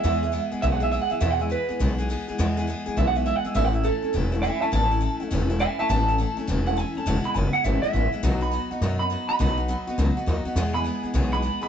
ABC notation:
X:1
M:4/4
L:1/8
Q:"Swing" 1/4=206
K:E
V:1 name="Clean electric guitar"
e3 z (3e f e (3e f e | (3e f e B2 z4 | z4 (3e f e (3e f e | (3e f e A2 z2 [eg] [ea] |
a4 z2 [eg] [ea] | a4 z f g a- | a b g f e e2 z | z b3 z b2 b- |
b4- b z3 | z b3 z b2 b |]
V:2 name="Steel-string acoustic guitar"
[E,,B,,E,G,B,G] [E,G,B,G] [E,G,B,G] [E,G,B,G] [E,,B,,E,G,B,G] [E,G,B,G] [E,G,B,G] [E,G,B,G] | [E,,B,,E,G,B,G] [E,G,B,G] [E,G,B,G] [E,G,B,G] [E,,B,,E,G,B,G] [E,G,B,G] [E,G,B,G] [E,G,B,G] | [E,,B,,E,G,B,G] [E,G,B,G] [E,G,B,G] [E,G,B,G] [E,,B,,E,G,B,G] [E,G,B,G] [E,G,B,G] [E,G,B,G] | [A,,E,A,CE] [A,CE] [E,A,CE] [A,CE] [A,,E,A,CE] [A,CE] [E,A,CE] [A,CE] |
[A,,E,A,CE] [A,CE] [E,A,CE] [A,CE] [A,,E,A,CE] [A,CE] [E,A,CE] [A,CE] | [A,,E,A,CE] [A,CE] [E,A,CE] [A,CE] [A,,E,A,CE] [A,CE] [E,A,CE] [A,CE] | [E,,B,,E,G,B,E] [E,G,B,E] [E,G,B,E] [E,G,B,E] [E,,B,,E,G,B,E] [E,G,B,E] [E,G,B,E] [E,G,B,E] | [B,,F,B,DF] [B,DF] [F,B,DF] [B,DF] [B,,F,B,DF] [B,DF] [F,B,DF] [B,DF] |
[B,,F,B,DF] [B,DF] [F,B,DF] [B,DF] [B,,F,B,DF] [B,DF] [F,B,DF] [B,DF] | [E,,B,,E,G,B,G] [E,G,B,G] [E,G,B,G] [E,G,B,G] [E,,B,,E,G,B,G] [E,G,B,G] [E,G,B,G] [E,G,B,G] |]
V:3 name="Upright bass" clef=bass
E,,3 z B,,,3 z | E,,3 z B,,,3 z | E,,3 z B,,,3 z | A,,,3 z E,,,3 z |
A,,,3 z E,,,3 z | A,,,3 z E,,,3 z | E,,, z F,,, z G,,, z A,,, z | B,,,3 z F,,3 z |
B,,,3 z C,, z D,, z | E,,3 z B,,,3 z |]